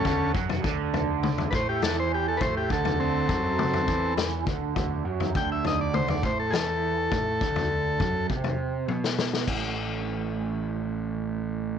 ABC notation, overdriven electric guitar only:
X:1
M:4/4
L:1/8
Q:1/4=102
K:D
V:1 name="Overdriven electric guitar" clef=bass
D, F, D,3 A, E,2 | A, D,2 F,2 E,2 D, | D, F, D,3 A, E,2 | A, D,2 F, =C2 B,2 |
[A,,E,A,CE]8 |]